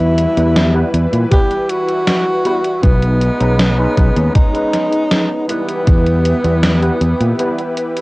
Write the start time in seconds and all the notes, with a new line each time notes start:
Already playing: E2 E3 G3 B3 E4 B4
0.18 closed hi-hat
0.36 E2 G3 B3 E4 B4, closed hi-hat
0.56 snare, closed hi-hat
0.74 G3 B3 E4 B4
0.94 E2, closed hi-hat
1.13 A#2, closed hi-hat
1.31 G3 B3 E4 G4 B4, kick, closed hi-hat
1.51 closed hi-hat
1.69 F#4, closed hi-hat
1.89 closed hi-hat
2.07 snare, closed hi-hat
2.45 G3 B3 E4 B4, closed hi-hat
2.64 closed hi-hat
2.83 B1 G#3 B3 D#4, kick, closed hi-hat
3.03 closed hi-hat
3.21 closed hi-hat
3.40 B1 G#3 C#4 D#4 B4, closed hi-hat
3.59 snare, closed hi-hat
3.78 G#3 C#4 D#4 B4
3.97 B1, kick, closed hi-hat
4.17 D#2, closed hi-hat
4.35 D#4, kick, closed hi-hat
4.53 G#3 C#4 D#4 B4, closed hi-hat
4.73 snare, closed hi-hat
4.93 closed hi-hat
5.11 snare, closed hi-hat
5.48 E3 G3 B3 E4 G4 B4, closed hi-hat
5.69 closed hi-hat
5.87 E2, kick, closed hi-hat
6.06 closed hi-hat
6.25 closed hi-hat
6.44 E2 G3 B3 E4 B4, closed hi-hat
6.63 snare, closed hi-hat
6.82 G3 B3 E4 B4, closed hi-hat
7.01 E2, closed hi-hat
7.20 A#2, closed hi-hat
7.39 G3 B3 E4 B4, closed hi-hat
7.58 closed hi-hat
7.77 closed hi-hat
7.97 closed hi-hat